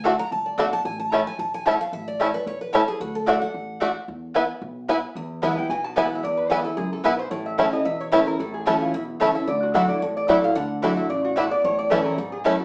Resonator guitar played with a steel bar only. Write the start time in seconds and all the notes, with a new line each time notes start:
5.43 A5
5.58 G5
5.70 G#5
5.84 A5
5.97 G#5
6.05 F#5
6.15 E5
6.24 D5
6.37 B4
6.50 C#5
6.65 A4
6.77 G#4
6.93 A4
7.04 B4
7.19 C5
7.31 C#5
7.46 E5
7.59 F#5
7.73 D#5
7.85 E5
8.01 C#5
8.13 B4
8.27 A#4
8.39 A4
8.54 G#4
8.67 F#4
8.81 F4
8.94 E4
9.35 E5
9.48 D5
9.63 F#4
9.74 A4
9.88 D5
10.01 C#5
10.17 D5
10.29 E5
10.44 F5
10.56 F#5
10.97 E5
11.10 D5
11.25 F#4
11.37 A4
11.51 D5
11.65 C#5
11.79 D5
11.91 B4
12.05 A#4
12.18 A4
12.32 G#4
12.45 E4
12.60 F#4